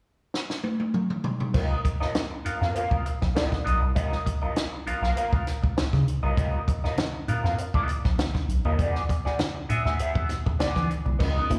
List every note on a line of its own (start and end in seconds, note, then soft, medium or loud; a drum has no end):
0.34 snare medium
0.50 snare soft
0.64 high tom medium
0.80 high tom medium
0.94 mid tom medium
1.10 mid tom medium
1.24 floor tom medium
1.40 floor tom medium
1.54 1.77 C#2 medium
1.54 1.75 B3 medium
1.54 1.76 F4 medium
1.54 1.76 A#4 medium
1.54 1.76 D#5 medium
1.54 kick loud
1.54 crash medium
1.84 muted clean electric guitar stroke soft
1.84 kick medium
1.84 closed hi-hat medium
2.00 2.06 F2 medium
2.00 2.13 B3 soft
2.00 2.14 F4 medium
2.00 2.14 A#4 medium
2.00 2.14 D#5 medium
2.00 snare soft
2.14 muted clean electric guitar stroke soft
2.14 snare loud
2.14 closed hi-hat medium
2.31 muted clean electric guitar stroke medium
2.45 2.52 F2 soft
2.45 2.61 B3 soft
2.45 2.61 F4 medium
2.45 2.60 A#4 medium
2.45 2.60 F5 medium
2.45 closed hi-hat medium
2.61 2.72 F2 medium
2.61 2.74 B3 soft
2.61 2.74 F4 soft
2.61 2.75 A#4 soft
2.61 2.75 F5 medium
2.61 snare soft
2.75 3.03 B3 medium
2.75 3.03 F4 medium
2.75 3.04 A#4 medium
2.75 3.04 F5 medium
2.75 closed hi-hat medium
2.91 3.02 C#2 medium
2.91 kick medium
3.06 muted clean electric guitar stroke soft
3.06 closed hi-hat medium
3.22 3.33 B1 medium
3.22 muted clean electric guitar stroke medium
3.22 kick medium
3.22 snare soft
3.35 3.56 B3 medium
3.35 3.51 F4 medium
3.35 3.50 A#4 medium
3.35 3.50 D#5 medium
3.35 snare loud
3.35 closed hi-hat medium
3.51 muted clean electric guitar stroke soft
3.51 kick medium
3.51 snare soft
3.65 3.78 B1 medium
3.65 3.82 B3 medium
3.65 3.81 F4 medium
3.65 3.81 A#4 medium
3.65 3.80 D#5 medium
3.65 closed hi-hat medium
3.81 3.92 C2 medium
3.81 muted clean electric guitar stroke soft
3.95 4.18 C#2 loud
3.95 4.17 B3 medium
3.95 4.17 F4 medium
3.95 4.17 A#4 medium
3.95 4.17 D#5 medium
3.95 kick loud
3.95 closed hi-hat medium
4.12 snare soft
4.26 muted clean electric guitar stroke soft
4.26 kick medium
4.26 closed hi-hat medium
4.42 4.48 B1 medium
4.42 4.55 B3 soft
4.42 4.56 F4 soft
4.42 4.56 A#4 medium
4.42 4.56 D#5 medium
4.56 muted clean electric guitar stroke soft
4.56 snare medium
4.56 closed hi-hat medium
4.72 muted clean electric guitar stroke soft
4.86 4.93 B1 soft
4.86 5.02 B3 medium
4.86 5.02 F4 medium
4.86 5.01 A#4 medium
4.86 5.01 F5 medium
4.86 closed hi-hat medium
5.02 5.13 B1 medium
5.02 5.16 B3 medium
5.02 5.16 F4 medium
5.02 5.16 A#4 medium
5.02 5.17 F5 medium
5.02 snare soft
5.16 5.23 C#2 soft
5.16 5.45 B3 medium
5.16 5.45 F4 medium
5.16 5.45 A#4 medium
5.16 5.45 F5 medium
5.16 closed hi-hat medium
5.33 5.43 C#2 medium
5.33 kick medium
5.47 muted clean electric guitar stroke soft
5.47 snare soft
5.47 closed hi-hat medium
5.63 5.74 C#2 medium
5.63 muted clean electric guitar stroke soft
5.63 kick medium
5.77 muted clean electric guitar stroke soft
5.77 snare loud
5.77 closed hi-hat medium
5.93 6.04 C#3 medium
5.93 muted clean electric guitar stroke soft
5.93 kick medium
5.93 snare soft
6.08 closed hi-hat medium
6.23 6.34 C2 medium
6.23 6.36 B3 medium
6.23 6.36 F4 medium
6.23 6.37 A#4 medium
6.23 6.37 D#5 medium
6.37 6.60 C#2 loud
6.37 6.58 B3 medium
6.37 6.59 F4 medium
6.37 6.59 A#4 medium
6.37 6.59 D#5 medium
6.37 kick loud
6.37 closed hi-hat medium
6.68 muted clean electric guitar stroke soft
6.68 kick medium
6.68 closed hi-hat medium
6.83 6.89 F2 soft
6.83 6.97 B3 soft
6.83 6.97 F4 soft
6.83 6.97 A#4 medium
6.83 6.98 D#5 medium
6.83 snare soft
6.98 muted clean electric guitar stroke soft
6.98 snare loud
6.98 closed hi-hat medium
6.98 high conga medium
7.14 muted clean electric guitar stroke soft
7.28 7.34 F2 medium
7.28 7.45 B3 medium
7.28 7.44 F4 medium
7.28 7.44 A#4 medium
7.28 7.43 F5 medium
7.28 closed hi-hat medium
7.28 muted conga medium
7.28 low conga medium
7.44 7.55 F2 medium
7.44 7.58 B3 soft
7.44 7.58 F4 medium
7.44 7.58 A#4 medium
7.44 7.59 F5 medium
7.44 snare soft
7.58 muted clean electric guitar stroke soft
7.58 closed hi-hat medium
7.74 7.85 C#2 medium
7.74 7.88 B3 medium
7.74 7.88 F4 medium
7.74 7.88 A#4 medium
7.74 7.88 D#5 medium
7.74 kick medium
7.88 muted clean electric guitar stroke soft
7.88 closed hi-hat medium
7.88 muted conga soft
8.04 8.15 B1 medium
8.04 muted clean electric guitar stroke soft
8.04 kick medium
8.04 snare soft
8.18 muted clean electric guitar stroke soft
8.18 snare loud
8.18 closed hi-hat medium
8.18 high conga medium
8.35 muted clean electric guitar stroke soft
8.35 kick medium
8.35 snare soft
8.48 8.60 B1 medium
8.48 closed hi-hat medium
8.65 8.75 D#2 medium
8.65 8.78 B3 medium
8.65 8.79 F4 medium
8.65 8.80 A#4 medium
8.65 8.80 D#5 medium
8.65 high conga medium
8.79 9.01 E2 loud
8.79 9.00 B3 medium
8.79 9.00 F#4 medium
8.79 9.01 G#4 medium
8.79 9.01 D5 medium
8.79 kick loud
8.79 closed hi-hat medium
8.95 snare soft
9.09 muted clean electric guitar stroke soft
9.09 kick medium
9.09 closed hi-hat medium
9.25 9.31 D2 medium
9.25 9.38 B3 soft
9.25 9.38 F#4 soft
9.25 9.39 G#4 medium
9.25 9.39 D5 medium
9.25 snare soft
9.39 muted clean electric guitar stroke soft
9.39 snare medium
9.39 closed hi-hat medium
9.39 high conga medium
9.55 muted clean electric guitar stroke medium
9.69 9.76 D2 soft
9.69 9.86 B3 medium
9.69 9.85 F#4 medium
9.69 9.85 G#4 medium
9.69 9.84 E5 medium
9.69 closed hi-hat medium
9.69 muted conga soft
9.69 low conga medium
9.85 9.96 D2 medium
9.85 9.98 B3 soft
9.85 9.99 F#4 medium
9.85 9.99 G#4 medium
9.85 9.99 E5 medium
9.85 snare soft
9.99 10.06 E2 soft
9.99 10.28 B3 medium
9.99 10.28 F#4 medium
9.99 10.28 G#4 medium
9.99 10.28 E5 medium
9.99 closed hi-hat medium
10.15 10.26 E2 medium
10.15 kick loud
10.29 muted clean electric guitar stroke soft
10.29 snare soft
10.29 closed hi-hat medium
10.29 muted conga medium
10.46 10.56 E2 medium
10.46 muted clean electric guitar stroke soft
10.46 kick medium
10.59 10.88 B3 medium
10.59 10.88 F#4 medium
10.59 10.88 G#4 medium
10.59 10.88 D5 medium
10.59 snare loud
10.59 closed hi-hat medium
10.59 high conga medium
10.76 10.86 E3 loud
10.76 kick medium
10.76 snare soft
10.76 high conga soft
10.90 muted clean electric guitar stroke soft
10.90 closed hi-hat medium
11.06 11.16 C2 medium
11.06 muted clean electric guitar stroke medium
11.06 high conga medium
11.19 11.42 C#2 loud
11.19 11.36 C#3 medium
11.19 11.47 B3 medium
11.19 11.48 F4 medium
11.19 11.48 A#4 medium
11.19 11.48 D#5 medium
11.19 kick loud
11.19 crash loud
11.37 11.42 B3 soft
11.37 11.42 D#4 soft
11.50 11.59 F3 medium
11.50 11.59 A#3 medium
11.50 11.59 B3 medium
11.50 11.59 D#4 medium
11.50 kick medium
11.50 closed hi-hat medium
11.50 muted conga soft